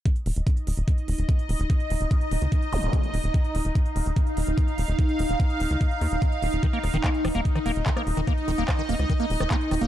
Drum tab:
HH |xxoxxxoxxxoxxxox|xxoxxxoxxxoxxxox|xxoxxxoxxxoxxxox|xxoxxxoxxxoxxxox|
CP |----------------|----------------|----------------|----------------|
SD |----------------|----------------|----------------|----------------|
BD |o---o---o---o---|o---o---o---o---|o---o---o---o---|o---o---o---o---|

HH |xxoxxxoxxxoxxxox|xxoxxxoxxxoxxxox|
CP |----x-------x---|----x-------x---|
SD |--r---r--r---r--|r---r--r---r--r-|
BD |o---o---o---o---|o---o---o---o---|